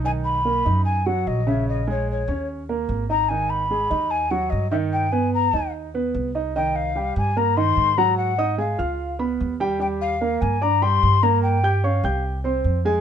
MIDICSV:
0, 0, Header, 1, 4, 480
1, 0, Start_track
1, 0, Tempo, 406504
1, 59, Time_signature, 4, 2, 24, 8
1, 15359, End_track
2, 0, Start_track
2, 0, Title_t, "Flute"
2, 0, Program_c, 0, 73
2, 61, Note_on_c, 0, 80, 107
2, 132, Note_off_c, 0, 80, 0
2, 287, Note_on_c, 0, 83, 104
2, 965, Note_off_c, 0, 83, 0
2, 1004, Note_on_c, 0, 80, 96
2, 1256, Note_on_c, 0, 78, 96
2, 1273, Note_off_c, 0, 80, 0
2, 1506, Note_on_c, 0, 75, 86
2, 1523, Note_off_c, 0, 78, 0
2, 1747, Note_on_c, 0, 76, 81
2, 1765, Note_off_c, 0, 75, 0
2, 1982, Note_off_c, 0, 76, 0
2, 1991, Note_on_c, 0, 75, 92
2, 2208, Note_off_c, 0, 75, 0
2, 2247, Note_on_c, 0, 73, 87
2, 2456, Note_off_c, 0, 73, 0
2, 2493, Note_on_c, 0, 73, 75
2, 2923, Note_off_c, 0, 73, 0
2, 3665, Note_on_c, 0, 82, 93
2, 3881, Note_on_c, 0, 80, 100
2, 3899, Note_off_c, 0, 82, 0
2, 4131, Note_on_c, 0, 83, 104
2, 4149, Note_off_c, 0, 80, 0
2, 4850, Note_on_c, 0, 80, 99
2, 4868, Note_off_c, 0, 83, 0
2, 5087, Note_on_c, 0, 78, 92
2, 5105, Note_off_c, 0, 80, 0
2, 5314, Note_on_c, 0, 75, 84
2, 5332, Note_off_c, 0, 78, 0
2, 5552, Note_off_c, 0, 75, 0
2, 5559, Note_on_c, 0, 76, 85
2, 5630, Note_off_c, 0, 76, 0
2, 5820, Note_on_c, 0, 79, 97
2, 6046, Note_on_c, 0, 80, 88
2, 6064, Note_off_c, 0, 79, 0
2, 6291, Note_off_c, 0, 80, 0
2, 6307, Note_on_c, 0, 82, 85
2, 6749, Note_off_c, 0, 82, 0
2, 7750, Note_on_c, 0, 79, 96
2, 7979, Note_on_c, 0, 77, 90
2, 7997, Note_off_c, 0, 79, 0
2, 8458, Note_off_c, 0, 77, 0
2, 8476, Note_on_c, 0, 80, 90
2, 8710, Note_on_c, 0, 82, 101
2, 8728, Note_off_c, 0, 80, 0
2, 8937, Note_on_c, 0, 84, 111
2, 8955, Note_off_c, 0, 82, 0
2, 9420, Note_on_c, 0, 82, 98
2, 9438, Note_off_c, 0, 84, 0
2, 9645, Note_off_c, 0, 82, 0
2, 9653, Note_on_c, 0, 78, 92
2, 10101, Note_off_c, 0, 78, 0
2, 10153, Note_on_c, 0, 77, 72
2, 10818, Note_off_c, 0, 77, 0
2, 11584, Note_on_c, 0, 79, 98
2, 11655, Note_off_c, 0, 79, 0
2, 11823, Note_on_c, 0, 77, 99
2, 12294, Note_on_c, 0, 80, 95
2, 12312, Note_off_c, 0, 77, 0
2, 12550, Note_on_c, 0, 82, 100
2, 12568, Note_off_c, 0, 80, 0
2, 12781, Note_on_c, 0, 84, 112
2, 12799, Note_off_c, 0, 82, 0
2, 13261, Note_on_c, 0, 82, 93
2, 13278, Note_off_c, 0, 84, 0
2, 13483, Note_off_c, 0, 82, 0
2, 13490, Note_on_c, 0, 79, 102
2, 13986, Note_on_c, 0, 77, 82
2, 14004, Note_off_c, 0, 79, 0
2, 14461, Note_off_c, 0, 77, 0
2, 15359, End_track
3, 0, Start_track
3, 0, Title_t, "Grand piano"
3, 0, Program_c, 1, 0
3, 49, Note_on_c, 1, 51, 71
3, 56, Note_on_c, 1, 63, 71
3, 446, Note_off_c, 1, 51, 0
3, 450, Note_off_c, 1, 63, 0
3, 531, Note_on_c, 1, 58, 64
3, 537, Note_on_c, 1, 70, 64
3, 730, Note_off_c, 1, 58, 0
3, 734, Note_off_c, 1, 70, 0
3, 770, Note_on_c, 1, 63, 62
3, 772, Note_on_c, 1, 75, 60
3, 1166, Note_off_c, 1, 63, 0
3, 1168, Note_off_c, 1, 75, 0
3, 1256, Note_on_c, 1, 54, 72
3, 1258, Note_on_c, 1, 66, 67
3, 1650, Note_off_c, 1, 54, 0
3, 1652, Note_off_c, 1, 66, 0
3, 1732, Note_on_c, 1, 49, 80
3, 1734, Note_on_c, 1, 61, 76
3, 2127, Note_off_c, 1, 49, 0
3, 2129, Note_off_c, 1, 61, 0
3, 2213, Note_on_c, 1, 56, 75
3, 2216, Note_on_c, 1, 68, 77
3, 2608, Note_off_c, 1, 56, 0
3, 2610, Note_off_c, 1, 68, 0
3, 2695, Note_on_c, 1, 61, 65
3, 2699, Note_on_c, 1, 73, 60
3, 3089, Note_off_c, 1, 61, 0
3, 3092, Note_off_c, 1, 73, 0
3, 3179, Note_on_c, 1, 70, 66
3, 3181, Note_on_c, 1, 58, 64
3, 3572, Note_off_c, 1, 70, 0
3, 3573, Note_off_c, 1, 58, 0
3, 3653, Note_on_c, 1, 63, 69
3, 3658, Note_on_c, 1, 75, 71
3, 3851, Note_off_c, 1, 63, 0
3, 3854, Note_off_c, 1, 75, 0
3, 3901, Note_on_c, 1, 51, 71
3, 3903, Note_on_c, 1, 63, 75
3, 4293, Note_off_c, 1, 51, 0
3, 4294, Note_off_c, 1, 63, 0
3, 4374, Note_on_c, 1, 56, 62
3, 4382, Note_on_c, 1, 68, 68
3, 4572, Note_off_c, 1, 56, 0
3, 4577, Note_off_c, 1, 68, 0
3, 4606, Note_on_c, 1, 63, 67
3, 4612, Note_on_c, 1, 75, 61
3, 5004, Note_off_c, 1, 63, 0
3, 5008, Note_off_c, 1, 75, 0
3, 5090, Note_on_c, 1, 54, 73
3, 5094, Note_on_c, 1, 66, 69
3, 5486, Note_off_c, 1, 54, 0
3, 5489, Note_off_c, 1, 66, 0
3, 5567, Note_on_c, 1, 51, 85
3, 5572, Note_on_c, 1, 63, 80
3, 5965, Note_off_c, 1, 51, 0
3, 5968, Note_off_c, 1, 63, 0
3, 6051, Note_on_c, 1, 59, 73
3, 6053, Note_on_c, 1, 71, 72
3, 6447, Note_off_c, 1, 59, 0
3, 6448, Note_off_c, 1, 71, 0
3, 6535, Note_on_c, 1, 63, 64
3, 6542, Note_on_c, 1, 75, 64
3, 6930, Note_off_c, 1, 63, 0
3, 6934, Note_off_c, 1, 75, 0
3, 7020, Note_on_c, 1, 59, 63
3, 7024, Note_on_c, 1, 71, 71
3, 7412, Note_off_c, 1, 59, 0
3, 7415, Note_off_c, 1, 71, 0
3, 7495, Note_on_c, 1, 63, 68
3, 7501, Note_on_c, 1, 75, 72
3, 7693, Note_off_c, 1, 63, 0
3, 7696, Note_off_c, 1, 75, 0
3, 7741, Note_on_c, 1, 51, 69
3, 7746, Note_on_c, 1, 63, 70
3, 7746, Note_on_c, 1, 75, 81
3, 8133, Note_off_c, 1, 51, 0
3, 8136, Note_off_c, 1, 63, 0
3, 8136, Note_off_c, 1, 75, 0
3, 8212, Note_on_c, 1, 55, 67
3, 8216, Note_on_c, 1, 67, 69
3, 8224, Note_on_c, 1, 79, 61
3, 8608, Note_off_c, 1, 55, 0
3, 8610, Note_off_c, 1, 67, 0
3, 8615, Note_off_c, 1, 79, 0
3, 8697, Note_on_c, 1, 58, 71
3, 8698, Note_on_c, 1, 70, 72
3, 8703, Note_on_c, 1, 82, 67
3, 8894, Note_off_c, 1, 58, 0
3, 8895, Note_off_c, 1, 70, 0
3, 8898, Note_off_c, 1, 82, 0
3, 8938, Note_on_c, 1, 63, 81
3, 8939, Note_on_c, 1, 51, 77
3, 8941, Note_on_c, 1, 75, 80
3, 9332, Note_off_c, 1, 51, 0
3, 9332, Note_off_c, 1, 63, 0
3, 9333, Note_off_c, 1, 75, 0
3, 9420, Note_on_c, 1, 54, 73
3, 9422, Note_on_c, 1, 66, 77
3, 9426, Note_on_c, 1, 78, 80
3, 9813, Note_off_c, 1, 54, 0
3, 9814, Note_off_c, 1, 66, 0
3, 9816, Note_off_c, 1, 78, 0
3, 9897, Note_on_c, 1, 63, 76
3, 9900, Note_on_c, 1, 75, 80
3, 9905, Note_on_c, 1, 87, 81
3, 10094, Note_off_c, 1, 63, 0
3, 10096, Note_off_c, 1, 75, 0
3, 10099, Note_off_c, 1, 87, 0
3, 10132, Note_on_c, 1, 56, 65
3, 10134, Note_on_c, 1, 68, 65
3, 10138, Note_on_c, 1, 80, 68
3, 10331, Note_off_c, 1, 56, 0
3, 10332, Note_off_c, 1, 68, 0
3, 10335, Note_off_c, 1, 80, 0
3, 10370, Note_on_c, 1, 65, 65
3, 10378, Note_on_c, 1, 77, 66
3, 10378, Note_on_c, 1, 89, 65
3, 10767, Note_off_c, 1, 65, 0
3, 10772, Note_off_c, 1, 77, 0
3, 10772, Note_off_c, 1, 89, 0
3, 10853, Note_on_c, 1, 59, 69
3, 10853, Note_on_c, 1, 71, 65
3, 10857, Note_on_c, 1, 83, 70
3, 11249, Note_off_c, 1, 59, 0
3, 11249, Note_off_c, 1, 71, 0
3, 11251, Note_off_c, 1, 83, 0
3, 11338, Note_on_c, 1, 55, 87
3, 11339, Note_on_c, 1, 67, 83
3, 11346, Note_on_c, 1, 79, 89
3, 11535, Note_off_c, 1, 55, 0
3, 11536, Note_off_c, 1, 67, 0
3, 11539, Note_off_c, 1, 79, 0
3, 11566, Note_on_c, 1, 55, 78
3, 11571, Note_on_c, 1, 79, 70
3, 11572, Note_on_c, 1, 67, 75
3, 11964, Note_off_c, 1, 55, 0
3, 11968, Note_off_c, 1, 67, 0
3, 11968, Note_off_c, 1, 79, 0
3, 12058, Note_on_c, 1, 58, 68
3, 12060, Note_on_c, 1, 70, 67
3, 12063, Note_on_c, 1, 82, 62
3, 12452, Note_off_c, 1, 58, 0
3, 12453, Note_off_c, 1, 70, 0
3, 12455, Note_off_c, 1, 82, 0
3, 12534, Note_on_c, 1, 74, 70
3, 12538, Note_on_c, 1, 62, 74
3, 12541, Note_on_c, 1, 86, 75
3, 12733, Note_off_c, 1, 74, 0
3, 12735, Note_off_c, 1, 62, 0
3, 12737, Note_off_c, 1, 86, 0
3, 12776, Note_on_c, 1, 55, 84
3, 12777, Note_on_c, 1, 67, 83
3, 12780, Note_on_c, 1, 79, 85
3, 13171, Note_off_c, 1, 55, 0
3, 13171, Note_off_c, 1, 67, 0
3, 13173, Note_off_c, 1, 79, 0
3, 13258, Note_on_c, 1, 58, 78
3, 13265, Note_on_c, 1, 70, 75
3, 13266, Note_on_c, 1, 82, 77
3, 13651, Note_off_c, 1, 58, 0
3, 13655, Note_off_c, 1, 70, 0
3, 13656, Note_off_c, 1, 82, 0
3, 13738, Note_on_c, 1, 67, 78
3, 13741, Note_on_c, 1, 79, 81
3, 13747, Note_on_c, 1, 91, 78
3, 13935, Note_off_c, 1, 67, 0
3, 13936, Note_off_c, 1, 79, 0
3, 13940, Note_off_c, 1, 91, 0
3, 13977, Note_on_c, 1, 61, 65
3, 13979, Note_on_c, 1, 73, 69
3, 13983, Note_on_c, 1, 85, 65
3, 14174, Note_off_c, 1, 61, 0
3, 14175, Note_off_c, 1, 73, 0
3, 14178, Note_off_c, 1, 85, 0
3, 14217, Note_on_c, 1, 67, 63
3, 14219, Note_on_c, 1, 79, 63
3, 14225, Note_on_c, 1, 91, 68
3, 14610, Note_off_c, 1, 67, 0
3, 14612, Note_off_c, 1, 79, 0
3, 14615, Note_off_c, 1, 91, 0
3, 14690, Note_on_c, 1, 60, 71
3, 14694, Note_on_c, 1, 72, 66
3, 14700, Note_on_c, 1, 84, 65
3, 15086, Note_off_c, 1, 60, 0
3, 15089, Note_off_c, 1, 72, 0
3, 15092, Note_off_c, 1, 84, 0
3, 15176, Note_on_c, 1, 56, 81
3, 15181, Note_on_c, 1, 68, 82
3, 15181, Note_on_c, 1, 80, 85
3, 15359, Note_off_c, 1, 56, 0
3, 15359, Note_off_c, 1, 68, 0
3, 15359, Note_off_c, 1, 80, 0
3, 15359, End_track
4, 0, Start_track
4, 0, Title_t, "Upright bass"
4, 0, Program_c, 2, 32
4, 0, Note_on_c, 2, 35, 85
4, 704, Note_off_c, 2, 35, 0
4, 776, Note_on_c, 2, 42, 88
4, 1449, Note_off_c, 2, 42, 0
4, 1498, Note_on_c, 2, 34, 86
4, 2626, Note_off_c, 2, 34, 0
4, 2688, Note_on_c, 2, 39, 91
4, 3365, Note_off_c, 2, 39, 0
4, 3409, Note_on_c, 2, 32, 88
4, 4541, Note_off_c, 2, 32, 0
4, 4614, Note_on_c, 2, 39, 97
4, 5288, Note_off_c, 2, 39, 0
4, 5338, Note_on_c, 2, 43, 86
4, 6466, Note_off_c, 2, 43, 0
4, 6532, Note_on_c, 2, 39, 84
4, 7207, Note_off_c, 2, 39, 0
4, 7255, Note_on_c, 2, 36, 93
4, 8385, Note_off_c, 2, 36, 0
4, 8454, Note_on_c, 2, 43, 93
4, 9129, Note_off_c, 2, 43, 0
4, 9173, Note_on_c, 2, 44, 89
4, 10304, Note_off_c, 2, 44, 0
4, 10381, Note_on_c, 2, 37, 89
4, 11052, Note_off_c, 2, 37, 0
4, 11105, Note_on_c, 2, 39, 91
4, 12230, Note_off_c, 2, 39, 0
4, 12300, Note_on_c, 2, 43, 99
4, 12972, Note_off_c, 2, 43, 0
4, 13022, Note_on_c, 2, 43, 97
4, 14148, Note_off_c, 2, 43, 0
4, 14211, Note_on_c, 2, 36, 98
4, 14886, Note_off_c, 2, 36, 0
4, 14929, Note_on_c, 2, 41, 84
4, 15359, Note_off_c, 2, 41, 0
4, 15359, End_track
0, 0, End_of_file